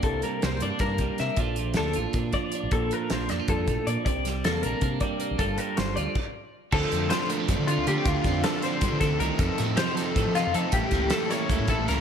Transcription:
<<
  \new Staff \with { instrumentName = "Clean electric guitar" } { \time 7/8 \key d \phrygian \tempo 4 = 157 a'8 bes'8 c''8 d''8 bes'4 e''8 | d''4 a'8 r4 d''4 | a'8 bes'8 c''8 d''8 a'4 d''8 | d''4 a'8 bes'4 d''4 |
a'8 bes'8 c''8 d''8 r4. | a'4 c''8 r4 f'8 g'8 | f'4 a'8 c''4 a'8 bes'8 | a'4 c''8 a'4 f'8 a'8 |
g'4 a'8 cis''4 a'8 bes'8 | }
  \new Staff \with { instrumentName = "Clean electric guitar" } { \time 7/8 \key d \phrygian << { <bes d'>4 bes8 d'8 bes4 bes8 | <f d' f' a'>4 d'8 f'8 d'4 d'8 | r4 d'8 d'16 f'4.~ f'16 | r4 bes8 d'8 bes4 bes8 |
<g bes f' a'>4. f'8 r4. | <f c' f' a'>8 c'4 bes16 c'8. f'8 bes16 c'16 | r8 c'4 c'2 | r8 bes16 c'8. c'8 a'8 ees'8 c'8 |
r8 bes4 bes8 a'8 e'8 bes8 | } \\ { c8 g2 g4 | bes,8 f2 f4 | bes,8 f4. g,8 a,8 bes,8 | c8 g2 g4 |
g,8 g4. r4. | d4 f2~ f8 | d4 f4 c8 d8 ees8 | f,4 f2~ f8 |
a,4 a2~ a8 | } >> }
  \new Staff \with { instrumentName = "Overdriven electric guitar" } { \time 7/8 \key d \phrygian r2. r8 | r2. r8 | r2. r8 | r2. r8 |
r2. r8 | <d f a d'>8 <f a d'>8 <d f a d'>8 <f a d'>8 <d f a d'>8 <d f a d'>8 <d f a d'>8 | <d f a d'>8 <f a d'>8 <d f a d'>8 <f a d'>8 <d f a d'>8 <d f a d'>8 <d f a d'>8 | <f, c ees a ees'>8 <ees a ees'>8 <f, c ees a ees'>8 <ees a ees'>8 <c ees a ees'>8 <f, c ees a ees'>8 <c ees a ees'>8 |
<a, e g cis' e'>8 <g cis' e'>8 <a, e g cis' e'>8 <g cis' e'>8 <e g cis' e'>8 <a, e g cis' e'>8 <e g cis' e'>8 | }
  \new Staff \with { instrumentName = "Fingered electric bass" } { \clef bass \time 7/8 \key d \phrygian c,8 r8 c,8 g,16 r16 g,8 c,16 r16 c16 r16 | bes,,4 d,8 a,,16 r16 bes,8 r8. a,,16 | bes,,8 r8 bes,,8 f,16 r16 f,8 bes,,16 r16 bes,16 r16 | c,4 e,8 bes,,16 r16 c8 r8. bes,,16 |
g,,8 r8 g,,8 d,16 r4. r16 | d,16 r16 f,8 r4 g,16 d8 d,16 d16 r16 | d,16 r16 f,8 r4 g,16 d8 d,16 c,16 r16 | f,16 r16 a,8 r4 a,16 f8 f,16 f16 r16 |
a,,16 r16 cis,8 r4 cis,16 a,8 a,,16 cis,16 r16 | }
  \new DrumStaff \with { instrumentName = "Drums" } \drummode { \time 7/8 <hh bd>8 hh8 <hh sn>8 hh8 <hh bd sn>8 <hh bd>8 <hh sn>8 | <hh bd>8 hh8 <hh sn>8 hh8 <hh bd>8 <hh bd>8 hh8 | <hh bd>8 hh8 <hh sn>8 <hh sn>8 <hh bd>8 <hh bd>8 hh8 | <hh bd>8 <hh sn>8 <hh sn>8 hh8 <hh bd>8 <hh bd>8 hh8 |
<hh bd>8 hh8 <hh sn>8 hh8 <cymc bd>4. | <cymc bd>8 hh8 <hh sn>8 hh8 <hh bd>8 hh8 hh8 | <hh bd>8 <hh bd sn>8 <hh sn>8 <hh sn>8 <hh bd>8 <hh bd sn>8 hh8 | <hh bd>8 <hh sn>8 <hh sn>8 <hh sn>8 <hh bd>8 <hh sn>8 hh8 |
<hh bd>8 <hh bd sn>8 <hh sn>8 <hh sn>8 <hh bd>8 <hh bd>8 <hh sn>8 | }
>>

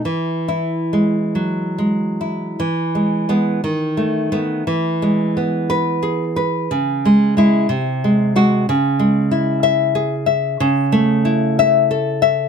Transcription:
\new Staff \with { instrumentName = "Nylon-string guitar" } { \time 6/8 \key e \major \tempo 4. = 60 << { r8 e'4 r4. | r4 b8 r4 b8 | r4. b'4 r8 | r4 e'8 r4 fis'8 |
r4. e''4 r8 | \key a \major r4. e''4 r8 | } \\ { e4 gis8 fis8 gis8 e'8 | e8 gis8 gis8 dis8 a8 a8 | e8 gis8 b4 gis'8 b'8 | cis8 gis8 gis8 bis,8 gis8 gis8 |
cis8 gis8 e'4 gis'8 e''8 | cis8 a8 e'4 a'8 e''8 | } >> }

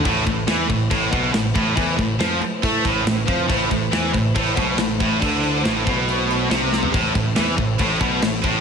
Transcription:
<<
  \new Staff \with { instrumentName = "String section" } { \time 4/4 \key a \minor \tempo 4 = 140 <a e' b' c''>1~ | <a e' b' c''>1~ | <a e' b' c''>1~ | <a e' b' c''>1~ |
<a e' b' c''>1 | }
  \new Staff \with { instrumentName = "Distorted electric guitar" } { \clef bass \time 4/4 \key a \minor a,8 a,8 e8 a,8 a,8 b,8 a,8 a,8 | e8 a,8 f8 r8 a8 a,8 a,8 f8 | a,8 a,8 e8 a,8 a,8 b,8 a,8 a,8 | d4 a,8 b,4. c4 |
a,8 a,8 e8 a,8 a,8 b,8 a,8 a,8 | }
  \new Staff \with { instrumentName = "Distorted electric guitar" } { \clef bass \time 4/4 \key a \minor a,8 a,8 e8 a,8 a,8 b,8 a,8 a,8 | e8 a,8 f8 r8 a8 a,8 a,8 f8 | a,8 a,8 e8 a,8 a,8 b,8 a,8 a,8 | d4 a,8 b,4. c4 |
a,8 a,8 e8 a,8 a,8 b,8 a,8 a,8 | }
  \new Staff \with { instrumentName = "Distorted electric guitar" } { \clef bass \time 4/4 \key a \minor a,8 a,8 e8 a,8 a,8 b,8 a,8 a,8 | e8 a,8 f8 r8 a8 a,8 a,8 f8 | a,8 a,8 e8 a,8 a,8 b,8 a,8 a,8 | d4 a,8 b,4. c4 |
a,8 a,8 e8 a,8 a,8 b,8 a,8 a,8 | }
  \new Staff \with { instrumentName = "Picked electric bass" } { \clef bass \time 4/4 \key a \minor a,,8 a,,8 e,8 a,,8 a,,8 b,,8 a,,8 a,,8 | e,8 a,,8 f,8 r8 a,8 a,,8 a,,8 f,8 | a,,8 a,,8 e,8 a,,8 a,,8 b,,8 a,,8 a,,8 | d,4 a,,8 b,,4. c,4 |
a,,8 a,,8 e,8 a,,8 a,,8 b,,8 a,,8 a,,8 | }
  \new DrumStaff \with { instrumentName = "Drums" } \drummode { \time 4/4 <cymc bd>8 <cymc bd>8 <cymc sn>8 <cymc bd>8 <cymc bd>8 <cymc bd>8 <cymc sn>8 <cymc bd>8 | <cymc bd>8 <cymc bd>8 <cymc sn>8 cymc8 <cymc bd>8 <cymc bd>8 <cymc sn>8 <cymc bd>8 | <cymc bd>8 <cymc bd>8 <cymc sn>8 <cymc bd>8 <cymc bd>8 <cymc bd>8 <cymc sn>8 <cymc bd>8 | <cymc bd>8 cymc8 <cymc sn>8 <cymc bd>8 cymc8 cymc8 <cymc sn>8 sn16 tomfh16 |
<cymc bd>8 <cymc bd>8 <cymc sn>8 <cymc bd>8 <cymc bd>8 <cymc bd>8 <cymc sn>8 <cymc bd>8 | }
>>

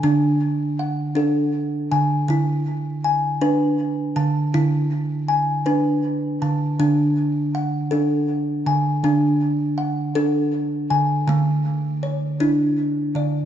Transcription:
<<
  \new Staff \with { instrumentName = "Kalimba" } { \time 6/8 \key d \lydian \tempo 4. = 53 << { gis''4 fis''4. gis''8~ | gis''8 r8 gis''4. a''8~ | a''4 gis''4. a''8~ | a''8 r8 fis''4. gis''8~ |
gis''4 fis''4. gis''8~ | gis''8 r8 cis''4. d''8 | } \\ { d'4 r8 a'4 r8 | e'4 r8 b'4 r8 | e'4 r8 b'4 r8 | d'4 r8 a'4 r8 |
d'4 r8 a'4 r8 | a4 r8 e'4 r8 | } >> }
  \new Staff \with { instrumentName = "Kalimba" } { \clef bass \time 6/8 \key d \lydian d4. d'4 d8 | d4. d'4 d8 | d4. d'4 d8 | d4. d'4 d8 |
d4. d'4 d8 | d4. d'4 d8 | }
>>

